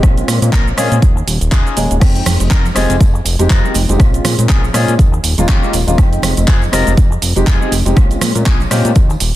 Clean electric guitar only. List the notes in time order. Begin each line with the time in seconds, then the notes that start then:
0.02 muted clean electric guitar stroke
0.17 muted clean electric guitar stroke
0.52 A#3 C#4 F4 A#4
0.77 A#3 C#4 F4 G#4
1.16 muted clean electric guitar stroke
1.26 muted clean electric guitar stroke
1.51 C#4 D#4 F4 G#4
2.00 muted clean electric guitar stroke
2.15 muted clean electric guitar stroke
2.50 C4 D#4 F4 A#4
2.75 C4 D#4 F4 G#4
3.14 muted clean electric guitar stroke
3.24 muted clean electric guitar stroke
3.49 C4 D#4 F4 A#4
3.98 muted clean electric guitar stroke
4.13 muted clean electric guitar stroke
4.48 A#3 C#4 F4 G#4
4.73 A#3 C#4 F4 G#4
5.12 muted clean electric guitar stroke
5.23 muted clean electric guitar stroke
5.48 C#4 D#4 F4 G4
5.98 muted clean electric guitar stroke
6.12 muted clean electric guitar stroke
6.47 C4 D#4 F4 G#4
6.72 C4 D#4 F4 A#4
7.11 muted clean electric guitar stroke
7.22 muted clean electric guitar stroke
7.47 C4 D#4 F4 G#4
7.96 muted clean electric guitar stroke
8.10 muted clean electric guitar stroke
8.46 A#3 C#4 F4 G#4
8.70 A#3 C#4 F4 G4
9.09 muted clean electric guitar stroke
9.20 muted clean electric guitar stroke